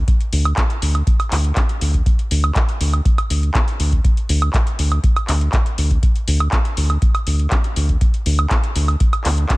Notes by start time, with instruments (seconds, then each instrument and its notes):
0.08 kick, closed hi-hat
0.21 closed hi-hat
0.33 analog synth bass D2, open hi-hat
0.45 closed hi-hat, high woodblock
0.57 kick, clap, closed hi-hat
0.70 closed hi-hat
0.82 analog synth bass D2, open hi-hat
0.95 closed hi-hat, high woodblock
1.07 kick, closed hi-hat
1.20 closed hi-hat, high woodblock
1.31 analog synth bass D2, clap, open hi-hat
1.45 closed hi-hat
1.56 kick, clap, closed hi-hat
1.69 closed hi-hat
1.81 analog synth bass D2, open hi-hat
1.94 kick, closed hi-hat
2.06 kick, closed hi-hat
2.19 closed hi-hat
2.31 analog synth bass D2, open hi-hat
2.44 closed hi-hat, high woodblock
2.55 kick, clap, closed hi-hat
2.69 closed hi-hat
2.81 analog synth bass D2, open hi-hat
2.93 closed hi-hat, high woodblock
3.05 kick, closed hi-hat
3.18 closed hi-hat, high woodblock
3.30 analog synth bass D2, open hi-hat
3.43 closed hi-hat
3.55 kick, clap, closed hi-hat
3.68 closed hi-hat
3.80 analog synth bass D2, open hi-hat
3.92 kick, closed hi-hat
4.04 kick, closed hi-hat
4.17 closed hi-hat
4.29 analog synth bass D2, open hi-hat
4.42 closed hi-hat, high woodblock
4.54 kick, clap, closed hi-hat
4.67 closed hi-hat
4.79 analog synth bass D2, open hi-hat
4.92 closed hi-hat, high woodblock
5.04 kick, closed hi-hat
5.16 closed hi-hat, high woodblock
5.28 analog synth bass D2, clap, open hi-hat
5.41 closed hi-hat
5.53 kick, clap, closed hi-hat
5.66 closed hi-hat
5.78 analog synth bass D2, open hi-hat
5.91 kick, closed hi-hat
6.03 kick, closed hi-hat
6.16 closed hi-hat
6.28 analog synth bass D2, open hi-hat
6.40 closed hi-hat, high woodblock
6.52 kick, clap, closed hi-hat
6.65 closed hi-hat
6.77 analog synth bass D2, open hi-hat
6.90 closed hi-hat, high woodblock
7.02 kick, closed hi-hat
7.15 closed hi-hat, high woodblock
7.27 analog synth bass D2, open hi-hat
7.39 closed hi-hat
7.51 kick, clap, closed hi-hat
7.64 closed hi-hat
7.76 analog synth bass D2, open hi-hat
7.89 kick, closed hi-hat
8.01 kick, closed hi-hat
8.14 closed hi-hat
8.26 analog synth bass D2, open hi-hat
8.39 closed hi-hat, high woodblock
8.50 kick, clap, closed hi-hat
8.64 closed hi-hat
8.76 analog synth bass D2, open hi-hat
8.88 closed hi-hat, high woodblock
9.00 kick, closed hi-hat
9.13 closed hi-hat, high woodblock
9.25 analog synth bass D2, clap, open hi-hat
9.38 closed hi-hat
9.49 kick, clap, closed hi-hat